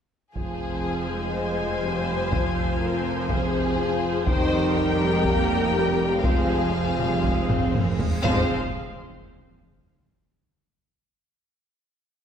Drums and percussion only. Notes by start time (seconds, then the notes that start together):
0.36 taiko
2.32 taiko
3.29 taiko
4.27 taiko
5.24 taiko
6.24 taiko
7.00 taiko mid
7.24 taiko
7.50 taiko low-mid
7.75 taiko low-mid
7.99 taiko low
8.25 taiko low